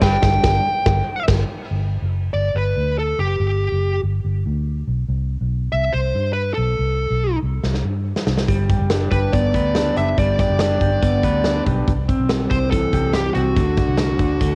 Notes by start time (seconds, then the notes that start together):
Already playing: G3 D4
0.01 G1 G3 B4 G5, kick, snare, crash
0.23 G1, kick, snare
0.44 G1, kick, snare
0.86 G1, kick, snare
1.28 G1, kick, snare, crash
1.71 G1
2.02 F#1
2.34 G1 D5
2.54 G1 B4
2.76 D2
2.98 A4
3.19 F#1 G4
3.39 G1
3.72 F#1
4.03 G1
4.24 G1
4.46 D2
4.87 B1
5.09 C2
5.41 B1
5.73 C2 E5
5.93 C2 C5
6.15 G2
6.33 B4
6.54 B1 A4
6.79 C2
7.10 B1
7.43 C2
7.63 C2, snare
7.74 snare
7.84 G2
8.16 snare
8.27 C2, snare
8.38 snare
8.48 G1 G3, kick, closed hi-hat
8.69 G4, kick, closed hi-hat
8.80 F#1
8.90 D4, snare, closed hi-hat
9.11 G1 G4 B4, kick, closed hi-hat
9.32 G1 B3 D5, kick, closed hi-hat
9.54 D2 B4, kick, closed hi-hat
9.75 D4, snare, closed hi-hat
9.96 F#1 G4 E5, closed hi-hat
10.18 G1 G3 D5, kick, closed hi-hat
10.39 G4 D5, kick, snare, closed hi-hat
10.50 F#1
10.59 D4 D5, snare, closed hi-hat
10.81 G1 G4, kick, closed hi-hat
11.02 G1 B3, kick, closed hi-hat
11.23 D2 B4, kick, closed hi-hat
11.44 D4, snare, closed hi-hat
11.66 B1 G4, kick, closed hi-hat
11.88 C2, kick, closed hi-hat
12.08 C4, kick, closed hi-hat
12.20 B1
12.29 G3, snare, closed hi-hat
12.50 C2 C4 C5, kick, closed hi-hat
12.71 E3 A4, kick, closed hi-hat
12.93 C2 G4, kick, closed hi-hat
13.13 G3 G4, snare, closed hi-hat
13.34 C2 C4 F#4, closed hi-hat
13.56 D2 D3, kick, closed hi-hat
13.76 D4, kick, snare, closed hi-hat
13.88 C2
13.98 A3, snare, closed hi-hat
14.19 D2 D4, kick, closed hi-hat
14.41 D2 A3, kick, closed hi-hat